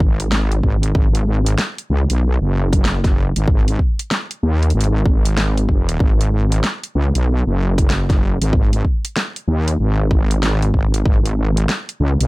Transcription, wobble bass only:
Already playing: G#1
0.63 G#1
0.95 G#1
1.90 C#2
2.10 B1
2.41 F#1
3.36 G#1
4.43 D#2
4.74 G#1
5.05 G#1
6.00 G#1
6.95 C#2
7.15 B1
7.47 F#1
8.41 G#1
9.48 D#2
9.79 G#1
10.74 G#1
11.06 G#1
12.00 C#2
12.20 B1

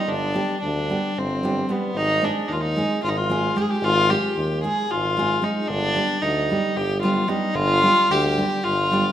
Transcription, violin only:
Already playing: D#4
0.09 D4
0.61 D4
1.19 C4
1.71 B3
1.97 D#4
2.24 D4
2.48 D#4
2.52 F4
2.61 D#4
3.03 F4
3.09 D#4
3.17 F4
3.56 G4
3.62 G#4
3.70 G4
3.84 F4
4.10 G4
4.64 G#4
4.91 F4
5.44 D#4
5.68 D4
6.22 D#4
6.77 G4
7.03 F4
7.28 D#4
7.55 F4
8.11 G4
8.64 F4

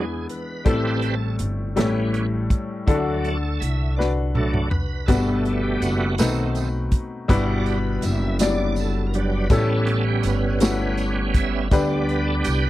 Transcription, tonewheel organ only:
Already playing: G#4
0.30 B4
0.65 G3 C4 A4 B4
1.76 G3 B3 C#4
2.89 F#3 A3 D4
3.24 A4
3.60 E5
3.96 D5
4.35 F#3 A3 D4 A4
4.70 B4
5.06 G3 A3 B3 A4
5.63 G4
5.81 F#4
6.20 D#3 A3 C4
7.30 G3 D4 F#4
7.60 D5
7.68 B4
8.03 E5
8.42 D5
8.80 A4
9.07 A#4
9.15 F#3 G3 D4 B4
9.51 G3 B3 C#4 A4
10.08 G4
10.27 B4
11.36 E5
11.71 G3 B3 D4
11.90 D5
12.09 B4
12.27 A4
12.45 G4
12.62 B4

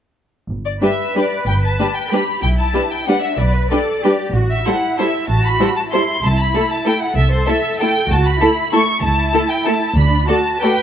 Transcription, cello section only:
0.81 B4
2.11 G4
2.42 E4
3.07 D4
3.38 B4
3.70 A4
4.03 G4
4.34 F#4
4.66 E4
5.28 F#4
5.91 E4
7.15 A4
8.09 F#4
8.40 E4
9.02 E4
9.97 D4
10.27 F#4
10.61 B4

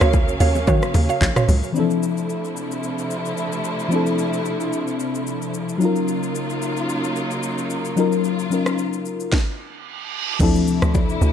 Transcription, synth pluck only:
0.01 F#4 C#5 F5
0.40 F#4 C#5 F5
0.67 F#4 C#5 F5
1.09 F#4 C#5 F5
1.36 F#4 C#5 F5

